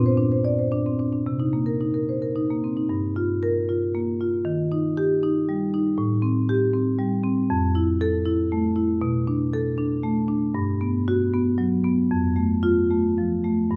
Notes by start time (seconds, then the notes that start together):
Already playing: A#2 C4
0.06 C5
0.17 D4
0.32 C5
0.45 D5
0.59 C5
0.72 D4
0.86 C4
1.00 D4
1.13 D4
1.26 C3
1.40 D#4
1.53 A#3
1.66 A#4
1.81 D#4
1.94 A#4
2.09 C5
2.22 A#4
2.36 D#4
2.50 A#3
2.64 C4
2.77 D#4
2.89 G2
3.16 F4
3.43 A#4
3.69 F4
3.94 A#3
4.21 F4
4.45 D#3
4.72 D#4
4.97 G4
5.23 D#4
5.49 G3
5.74 D#4
5.98 A2
6.22 C4
6.49 G4
6.73 C4
6.99 G3
7.24 C4
7.50 F2
7.75 E4
8.01 A4
8.26 E4
8.52 A3
8.76 E4
9.02 B2
9.27 D4
9.53 A4
9.78 D4
10.03 A3
10.28 D4
10.55 G2
10.81 B3
11.08 F#4
11.33 B3
11.58 F#3
11.84 B3
12.11 F2
12.36 A3
12.63 F4
12.91 A3
13.18 F3
13.44 A3
13.71 G2